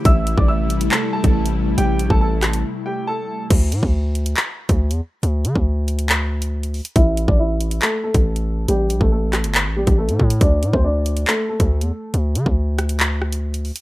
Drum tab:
CC |----------------|----------------|x---------------|----------------|
HH |x-x---xx---x-x--|x-x---xx--------|x-x---xx---x-x--|x-x---xx---x-xox|
CP |--------x-------|------x---------|--------x-------|--------x-------|
SD |----------------|------r---------|----------------|----------------|
BD |o--o-------o----|---o------------|o--o-------o----|---o------------|

CC |----------------|----------------|----------------|----------------|
HH |x-x---xx---x-x--|x-x---xx---x-x-x|x-x---xx---x-x--|x-x---xx---x-xox|
CP |--------x-------|------x-x-------|--------x-------|--------x-------|
SD |----------------|------r---------|----------------|------r---r-----|
BD |o--o-------o----|---o-------o--o-|o--o-------o----|---o------------|